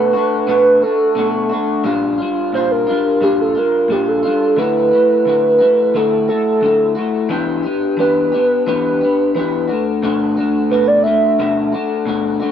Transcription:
0.00 0.13 B2 medium
0.00 0.14 A3 medium
0.00 0.14 D4 medium
0.00 0.12 F#4 medium
0.00 0.47 B4 loud
0.13 0.47 A3 soft
0.13 0.48 D4 soft
0.13 0.48 F#4 medium
0.47 0.82 B2 medium
0.47 0.82 A3 medium
0.47 0.83 D4 medium
0.47 0.81 F#4 medium
0.47 0.84 B4 loud
0.82 1.16 A3 soft
0.82 1.17 D4 soft
0.82 1.16 F#4 soft
0.82 1.51 A4 medium
1.15 1.50 B2 medium
1.15 1.51 A3 medium
1.15 1.51 D4 medium
1.15 1.48 F#4 medium
1.49 1.85 A3 soft
1.49 1.84 D4 soft
1.49 1.84 F#4 medium
1.84 2.19 A#2 medium
1.84 2.19 G3 medium
1.84 2.19 D4 medium
1.84 2.17 F4 medium
2.18 2.54 D4 soft
2.18 2.53 F4 medium
2.22 2.53 G3 soft
2.53 2.87 A#2 medium
2.53 2.88 G3 medium
2.53 2.88 D4 medium
2.53 2.86 F4 medium
2.53 2.73 C5 loud
2.71 3.25 A#4 loud
2.87 3.20 G3 soft
2.87 3.22 D4 soft
2.87 3.21 F4 medium
3.21 3.55 A#2 medium
3.21 3.56 G3 medium
3.21 3.56 D4 medium
3.21 3.54 F4 medium
3.21 3.39 G4 medium
3.41 3.60 A4 medium
3.55 3.90 D4 soft
3.55 3.89 F4 soft
3.55 3.93 A#4 medium
3.59 3.89 G3 soft
3.88 4.23 A#2 medium
3.88 4.24 G3 medium
3.88 4.24 D4 medium
3.88 4.22 F4 medium
3.88 4.10 G4 medium
4.08 4.58 A4 medium
4.23 4.58 D4 soft
4.23 4.57 F4 soft
4.27 4.57 G3 soft
4.57 4.91 D3 medium
4.57 4.92 A3 medium
4.57 4.92 E4 medium
4.57 4.90 F#4 medium
4.57 5.97 B4 loud
4.91 5.26 A3 soft
4.91 5.27 E4 soft
4.91 5.26 F#4 soft
5.25 5.60 D3 medium
5.25 5.61 A3 medium
5.25 5.59 E4 medium
5.25 5.57 F#4 medium
5.59 5.94 A3 soft
5.59 5.94 E4 medium
5.59 5.94 F#4 medium
5.94 6.28 D3 medium
5.94 6.29 A3 medium
5.94 6.29 E4 medium
5.94 6.27 F#4 medium
5.94 6.28 A4 medium
6.28 6.61 A3 soft
6.28 6.63 E4 soft
6.28 6.62 F#4 soft
6.28 6.93 A4 medium
6.61 6.96 D3 medium
6.61 6.97 A3 medium
6.61 6.96 E4 medium
6.65 6.94 F#4 medium
6.95 7.30 A3 soft
6.95 7.30 E4 soft
6.95 7.30 F#4 medium
7.29 7.64 E3 medium
7.29 7.65 B3 medium
7.29 7.64 D4 medium
7.29 7.62 G4 medium
7.63 7.98 B3 soft
7.63 7.99 D4 soft
7.63 7.98 G4 medium
7.97 8.32 E3 medium
7.97 8.33 B3 medium
7.97 8.33 D4 medium
7.97 8.63 B4 loud
8.01 8.31 G4 medium
8.32 8.66 B3 soft
8.32 8.67 D4 soft
8.32 8.67 G4 medium
8.67 9.01 E3 medium
8.67 9.02 B3 medium
8.67 9.02 D4 medium
8.67 8.99 G4 medium
8.67 9.32 B4 loud
9.01 9.36 D4 soft
9.01 9.35 G4 soft
9.05 9.35 B3 soft
9.35 9.69 E3 medium
9.35 9.70 B3 medium
9.35 9.68 D4 medium
9.35 9.67 G4 medium
9.35 9.83 B4 medium
9.68 10.02 A3 soft
9.68 10.03 D4 soft
9.68 10.03 F#4 soft
10.03 10.37 B2 medium
10.03 10.38 A3 medium
10.03 10.37 D4 medium
10.03 10.35 F#4 medium
10.36 10.71 D4 soft
10.36 10.71 F#4 medium
10.41 10.70 A3 soft
10.70 11.05 B2 medium
10.70 11.06 A3 medium
10.70 11.05 D4 medium
10.70 11.03 F#4 medium
10.70 10.89 B4 medium
10.87 11.04 D5 medium
11.03 11.39 D4 soft
11.03 11.39 F#4 soft
11.03 11.72 E5 loud
11.08 11.38 A3 soft
11.39 11.73 B2 medium
11.39 11.74 A3 medium
11.39 11.73 D4 medium
11.39 11.71 F#4 medium
11.72 12.05 A3 soft
11.72 12.07 D4 medium
11.72 12.07 F#4 medium
12.05 12.41 B2 medium
12.05 12.41 A3 medium
12.05 12.40 D4 medium
12.05 12.39 F#4 medium
12.40 12.52 A3 medium
12.40 12.52 D4 medium
12.40 12.52 F#4 medium

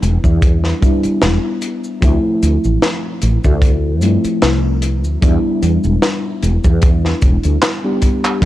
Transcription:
0.00 0.16 E1 medium
0.00 0.77 G3 medium
0.00 0.78 B3 medium
0.00 0.78 D4 medium
0.00 0.79 E4 medium
0.00 closed hi-hat medium
0.00 cabasa medium
0.24 0.72 E2 loud
0.24 kick medium
0.24 cabasa soft
0.42 kick loud
0.42 closed hi-hat medium
0.42 cabasa soft
0.64 snare soft
0.81 1.97 G3 medium
0.81 1.98 B3 medium
0.81 1.98 D4 medium
0.81 1.99 E4 medium
0.81 kick medium
0.81 closed hi-hat medium
0.81 cabasa medium
1.03 muted fretless electric bass stroke soft
1.03 closed hi-hat medium
1.03 cabasa medium
1.22 1.37 E1 medium
1.22 snare loud
1.22 closed hi-hat medium
1.22 cabasa soft
1.62 closed hi-hat medium
1.62 cabasa medium
1.84 cabasa soft
2.01 2.16 D2 loud
2.01 3.97 F3 medium
2.01 3.98 A3 medium
2.01 3.98 C4 medium
2.01 3.99 E4 medium
2.01 kick loud
2.01 closed hi-hat medium
2.01 cabasa soft
2.42 2.56 D2 medium
2.42 closed hi-hat medium
2.42 cabasa medium
2.64 2.76 A1 medium
2.64 cabasa medium
2.82 snare loud
2.82 closed hi-hat medium
2.82 cabasa soft
3.22 3.36 A1 medium
3.22 closed hi-hat medium
3.22 cabasa medium
3.44 4.02 D2 loud
3.44 kick medium
3.44 cabasa medium
3.62 kick loud
3.62 closed hi-hat medium
3.62 cabasa medium
4.01 4.16 G2 loud
4.01 5.17 F3 medium
4.01 5.18 A3 medium
4.01 5.18 C4 medium
4.01 5.19 E4 medium
4.01 closed hi-hat medium
4.01 cabasa medium
4.24 muted fretless electric bass stroke soft
4.24 closed hi-hat medium
4.24 cabasa medium
4.42 5.04 C2 medium
4.42 snare loud
4.42 closed hi-hat medium
4.42 cabasa soft
4.82 closed hi-hat medium
4.82 cabasa medium
5.04 5.16 D2 loud
5.04 cabasa soft
5.21 5.36 E2 loud
5.21 7.17 G3 medium
5.21 7.18 B3 medium
5.21 7.18 D4 medium
5.21 7.19 E4 medium
5.21 kick loud
5.21 closed hi-hat medium
5.21 cabasa soft
5.62 5.76 E2 medium
5.62 closed hi-hat medium
5.62 cabasa medium
5.84 5.96 E1 medium
5.84 cabasa soft
6.02 snare loud
6.02 closed hi-hat medium
6.02 cabasa soft
6.43 6.57 E1 medium
6.43 closed hi-hat medium
6.43 cabasa medium
6.64 7.12 E2 loud
6.64 kick medium
6.64 cabasa medium
6.82 kick loud
6.82 closed hi-hat medium
6.82 cabasa soft
7.05 snare soft
7.22 7.37 E1 medium
7.22 kick loud
7.22 closed hi-hat medium
7.22 cabasa medium
7.44 7.56 D2 medium
7.44 closed hi-hat medium
7.44 cabasa medium
7.62 snare loud
7.62 clap loud
7.62 closed hi-hat medium
7.62 cabasa soft
7.84 8.38 G3 medium
7.84 8.38 B3 medium
7.84 8.38 D4 medium
7.84 8.39 G4 medium
8.02 kick medium
8.02 closed hi-hat medium
8.02 cabasa medium
8.24 clap medium
8.24 cabasa medium
8.41 8.45 F3 medium
8.41 kick loud

